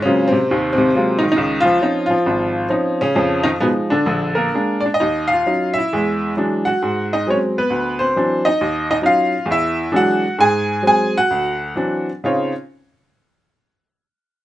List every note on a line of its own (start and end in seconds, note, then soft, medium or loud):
0.02 0.33 C#3 medium
0.02 0.37 F#3 medium
0.02 0.37 G#3 medium
0.02 0.26 C4 soft
0.02 0.35 C#4 medium
0.06 0.37 A#3 soft
0.06 0.37 F4 medium
0.28 0.71 C4 medium
0.33 0.75 C3 medium
0.51 0.89 D#2 medium
0.51 0.89 D#3 medium
0.73 0.94 C4 medium
0.78 1.20 C3 medium
0.95 1.25 F#3 medium
0.95 1.25 G#3 soft
0.95 1.25 A#3 medium
0.95 1.25 C4 soft
0.95 1.26 F4 medium
1.19 1.30 D#4 medium
1.23 1.35 D#3 medium
1.32 1.62 D#4 medium
1.36 1.76 C#2 medium
1.36 1.64 D#3 medium
1.60 2.05 F4 loud
1.65 1.80 F3 medium
1.81 2.09 F3 medium
1.81 2.12 C4 medium
1.81 2.12 C#4 medium
1.81 2.13 D#4 medium
2.06 2.64 F4 medium
2.10 2.66 F3 medium
2.26 2.65 G#1 medium
2.69 3.02 F3 medium
2.69 3.01 C4 medium
2.69 3.00 C#4 medium
2.69 3.02 D#4 medium
3.01 3.43 C#3 medium
3.01 3.43 C#4 medium
3.15 3.55 F2 medium
3.15 3.54 F3 medium
3.43 3.50 D#3 medium
3.43 3.48 D#4 medium
3.60 3.68 B2 medium
3.60 3.92 F3 medium
3.60 3.92 G#3 soft
3.60 3.67 B3 medium
3.60 3.92 D#4 medium
3.90 4.05 D3 medium
3.90 4.53 D4 medium
4.06 4.47 A#1 medium
4.06 4.47 D3 medium
4.35 4.53 A#3 medium
4.35 4.80 A#4 medium
4.54 4.86 G#3 medium
4.54 4.86 A#3 soft
4.54 4.84 D4 medium
4.81 4.86 D5 medium
4.86 4.91 D4 medium
4.94 5.29 D#5 medium
5.00 5.41 D#2 medium
5.00 5.29 D#4 medium
5.28 5.72 F5 medium
5.33 5.75 F4 medium
5.46 5.78 F#3 soft
5.46 5.79 C#4 soft
5.46 5.79 D#4 medium
5.74 6.32 E5 medium
5.78 6.34 E4 medium
5.93 6.32 E2 medium
5.93 6.32 G#3 medium
6.37 6.69 E3 medium
6.37 6.68 F#3 soft
6.37 6.69 G#3 soft
6.37 6.69 D4 medium
6.65 7.10 F#4 medium
6.65 7.13 F#5 medium
6.82 7.22 G#2 medium
7.13 7.27 D#4 medium
7.13 7.27 D#5 medium
7.27 7.58 F#3 soft
7.27 7.58 G#3 soft
7.27 7.58 C4 medium
7.27 7.37 C#5 medium
7.31 7.38 C#4 medium
7.58 7.99 B3 medium
7.58 8.03 B4 medium
7.70 8.10 D2 medium
7.99 8.15 C4 medium
7.99 8.42 C5 medium
8.16 8.47 E3 medium
8.16 8.47 F#3 soft
8.16 8.47 C4 soft
8.16 8.48 D4 medium
8.45 8.87 D#4 medium
8.45 8.86 D#5 medium
8.61 8.99 D#2 medium
8.91 8.96 D#4 medium
8.91 8.96 D#5 medium
9.02 9.33 F#3 medium
9.02 9.34 C#4 soft
9.02 9.34 D#4 medium
9.02 9.46 F4 medium
9.06 9.51 F5 medium
9.46 9.86 E2 medium
9.51 9.92 E4 medium
9.51 9.96 E5 loud
9.92 10.24 E3 medium
9.92 10.24 F#3 soft
9.92 10.25 G#3 soft
9.92 10.24 D4 medium
9.96 10.37 F#4 medium
9.96 10.37 F#5 medium
10.39 10.78 G#2 medium
10.39 10.82 G#4 medium
10.39 10.82 G#5 medium
10.82 11.15 F#3 soft
10.82 11.15 G#3 soft
10.82 11.16 C4 medium
10.87 11.14 G#4 medium
10.87 11.17 G#5 medium
11.17 12.06 F#4 medium
11.17 12.06 F#5 medium
11.31 11.71 D2 medium
11.75 12.09 E3 soft
11.75 12.09 F#3 soft
11.75 12.09 C4 soft
11.75 12.09 D4 soft
12.24 12.51 C#3 medium
12.24 12.51 C4 soft
12.24 12.52 D#4 soft
12.24 12.51 F4 medium
12.24 12.53 C#5 medium